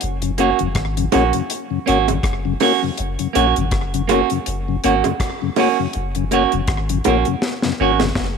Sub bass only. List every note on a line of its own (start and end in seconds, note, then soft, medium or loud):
0.03 0.53 F#1 loud
0.62 0.74 F#1 medium
0.76 1.08 G#1 medium
1.15 1.32 A#1 medium
1.88 2.20 G#1 medium
2.24 2.56 F#1 medium
2.99 3.17 F#1 loud
3.36 3.53 A#1 medium
3.57 3.74 G#1 loud
3.73 4.23 F#1 loud
4.47 4.79 F#1 medium
4.85 5.02 G#1 medium
5.96 6.45 F#1 loud
6.53 6.67 F#1 medium
6.69 7.01 G#1 medium
7.06 7.24 A#1 medium
7.80 8.12 G#1 medium
8.16 8.38 F#1 medium